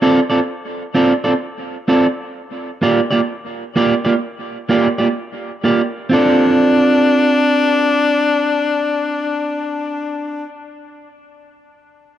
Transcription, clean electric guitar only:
0, 0, Header, 1, 2, 480
1, 0, Start_track
1, 0, Key_signature, -1, "minor"
1, 0, Tempo, 936622
1, 1213, Time_signature, 4, 2, 24, 8
1, 6242, End_track
2, 0, Start_track
2, 0, Title_t, "Clean electric guitar"
2, 0, Program_c, 0, 27
2, 10, Note_on_c, 0, 60, 92
2, 12, Note_on_c, 0, 65, 83
2, 13, Note_on_c, 0, 69, 96
2, 17, Note_on_c, 0, 74, 96
2, 95, Note_off_c, 0, 60, 0
2, 96, Note_off_c, 0, 65, 0
2, 96, Note_off_c, 0, 69, 0
2, 98, Note_off_c, 0, 74, 0
2, 152, Note_on_c, 0, 74, 70
2, 155, Note_on_c, 0, 69, 67
2, 159, Note_on_c, 0, 65, 64
2, 161, Note_on_c, 0, 60, 56
2, 197, Note_off_c, 0, 74, 0
2, 199, Note_off_c, 0, 69, 0
2, 201, Note_off_c, 0, 65, 0
2, 202, Note_off_c, 0, 60, 0
2, 485, Note_on_c, 0, 60, 81
2, 488, Note_on_c, 0, 65, 88
2, 491, Note_on_c, 0, 69, 79
2, 493, Note_on_c, 0, 74, 89
2, 572, Note_off_c, 0, 60, 0
2, 574, Note_off_c, 0, 65, 0
2, 576, Note_off_c, 0, 69, 0
2, 576, Note_off_c, 0, 74, 0
2, 636, Note_on_c, 0, 74, 67
2, 637, Note_on_c, 0, 69, 63
2, 639, Note_on_c, 0, 65, 54
2, 645, Note_on_c, 0, 60, 55
2, 679, Note_off_c, 0, 74, 0
2, 680, Note_off_c, 0, 69, 0
2, 681, Note_off_c, 0, 65, 0
2, 684, Note_off_c, 0, 60, 0
2, 963, Note_on_c, 0, 60, 71
2, 966, Note_on_c, 0, 65, 70
2, 969, Note_on_c, 0, 69, 78
2, 971, Note_on_c, 0, 74, 84
2, 1052, Note_off_c, 0, 60, 0
2, 1053, Note_off_c, 0, 65, 0
2, 1054, Note_off_c, 0, 69, 0
2, 1056, Note_off_c, 0, 74, 0
2, 1443, Note_on_c, 0, 58, 78
2, 1449, Note_on_c, 0, 65, 100
2, 1449, Note_on_c, 0, 67, 92
2, 1452, Note_on_c, 0, 74, 95
2, 1532, Note_off_c, 0, 58, 0
2, 1535, Note_off_c, 0, 65, 0
2, 1535, Note_off_c, 0, 67, 0
2, 1536, Note_off_c, 0, 74, 0
2, 1592, Note_on_c, 0, 74, 71
2, 1595, Note_on_c, 0, 67, 66
2, 1599, Note_on_c, 0, 58, 54
2, 1599, Note_on_c, 0, 65, 57
2, 1637, Note_off_c, 0, 74, 0
2, 1639, Note_off_c, 0, 67, 0
2, 1641, Note_off_c, 0, 58, 0
2, 1641, Note_off_c, 0, 65, 0
2, 1926, Note_on_c, 0, 58, 76
2, 1929, Note_on_c, 0, 65, 85
2, 1932, Note_on_c, 0, 67, 84
2, 1932, Note_on_c, 0, 74, 96
2, 2013, Note_off_c, 0, 58, 0
2, 2015, Note_off_c, 0, 65, 0
2, 2016, Note_off_c, 0, 67, 0
2, 2016, Note_off_c, 0, 74, 0
2, 2074, Note_on_c, 0, 74, 71
2, 2075, Note_on_c, 0, 67, 57
2, 2080, Note_on_c, 0, 58, 57
2, 2080, Note_on_c, 0, 65, 59
2, 2118, Note_off_c, 0, 74, 0
2, 2119, Note_off_c, 0, 67, 0
2, 2121, Note_off_c, 0, 65, 0
2, 2122, Note_off_c, 0, 58, 0
2, 2404, Note_on_c, 0, 58, 84
2, 2408, Note_on_c, 0, 65, 85
2, 2412, Note_on_c, 0, 67, 91
2, 2412, Note_on_c, 0, 74, 89
2, 2492, Note_off_c, 0, 58, 0
2, 2494, Note_off_c, 0, 65, 0
2, 2496, Note_off_c, 0, 67, 0
2, 2496, Note_off_c, 0, 74, 0
2, 2554, Note_on_c, 0, 74, 58
2, 2555, Note_on_c, 0, 67, 54
2, 2560, Note_on_c, 0, 65, 51
2, 2562, Note_on_c, 0, 58, 48
2, 2598, Note_off_c, 0, 74, 0
2, 2599, Note_off_c, 0, 67, 0
2, 2601, Note_off_c, 0, 65, 0
2, 2602, Note_off_c, 0, 58, 0
2, 2889, Note_on_c, 0, 58, 69
2, 2891, Note_on_c, 0, 65, 72
2, 2895, Note_on_c, 0, 67, 74
2, 2896, Note_on_c, 0, 74, 70
2, 2975, Note_off_c, 0, 58, 0
2, 2976, Note_off_c, 0, 65, 0
2, 2978, Note_off_c, 0, 67, 0
2, 2979, Note_off_c, 0, 74, 0
2, 3123, Note_on_c, 0, 60, 76
2, 3133, Note_on_c, 0, 65, 74
2, 3143, Note_on_c, 0, 69, 93
2, 3149, Note_on_c, 0, 74, 80
2, 5353, Note_off_c, 0, 60, 0
2, 5362, Note_off_c, 0, 65, 0
2, 5372, Note_off_c, 0, 69, 0
2, 5379, Note_off_c, 0, 74, 0
2, 6242, End_track
0, 0, End_of_file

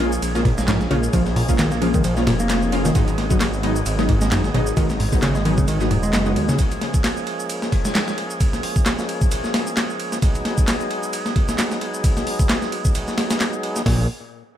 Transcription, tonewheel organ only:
0, 0, Header, 1, 2, 480
1, 0, Start_track
1, 0, Tempo, 454545
1, 1195, Time_signature, 4, 2, 24, 8
1, 15390, End_track
2, 0, Start_track
2, 0, Title_t, "Tonewheel organ"
2, 0, Program_c, 0, 16
2, 0, Note_on_c, 0, 53, 68
2, 0, Note_on_c, 0, 56, 62
2, 0, Note_on_c, 0, 58, 60
2, 0, Note_on_c, 0, 61, 64
2, 0, Note_on_c, 0, 68, 76
2, 3078, Note_off_c, 0, 53, 0
2, 3078, Note_off_c, 0, 56, 0
2, 3078, Note_off_c, 0, 58, 0
2, 3078, Note_off_c, 0, 61, 0
2, 3117, Note_on_c, 0, 56, 64
2, 3118, Note_on_c, 0, 54, 69
2, 3118, Note_on_c, 0, 59, 61
2, 3118, Note_on_c, 0, 63, 61
2, 6918, Note_off_c, 0, 54, 0
2, 6918, Note_off_c, 0, 59, 0
2, 6919, Note_off_c, 0, 63, 0
2, 6955, Note_on_c, 0, 53, 67
2, 6955, Note_on_c, 0, 61, 63
2, 6957, Note_on_c, 0, 58, 60
2, 10754, Note_off_c, 0, 56, 0
2, 10754, Note_off_c, 0, 68, 0
2, 10757, Note_off_c, 0, 53, 0
2, 10757, Note_off_c, 0, 61, 0
2, 10758, Note_off_c, 0, 58, 0
2, 10794, Note_on_c, 0, 68, 75
2, 10795, Note_on_c, 0, 54, 69
2, 10795, Note_on_c, 0, 63, 63
2, 10796, Note_on_c, 0, 56, 64
2, 10796, Note_on_c, 0, 59, 60
2, 14596, Note_off_c, 0, 68, 0
2, 14597, Note_off_c, 0, 54, 0
2, 14597, Note_off_c, 0, 59, 0
2, 14597, Note_off_c, 0, 63, 0
2, 14598, Note_off_c, 0, 56, 0
2, 14635, Note_on_c, 0, 53, 64
2, 14636, Note_on_c, 0, 56, 63
2, 14636, Note_on_c, 0, 68, 76
2, 14637, Note_on_c, 0, 58, 62
2, 14638, Note_on_c, 0, 61, 66
2, 14859, Note_off_c, 0, 53, 0
2, 14859, Note_off_c, 0, 56, 0
2, 14859, Note_off_c, 0, 68, 0
2, 14860, Note_off_c, 0, 58, 0
2, 14860, Note_off_c, 0, 61, 0
2, 15390, End_track
0, 0, End_of_file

